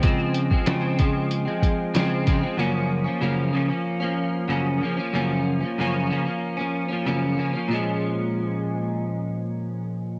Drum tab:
HH |x-x-x-x-x-x-x-x-|----------------|----------------|----------------|
SD |----o-------o-o-|----------------|----------------|----------------|
BD |o--o--o---o---o-|----------------|----------------|----------------|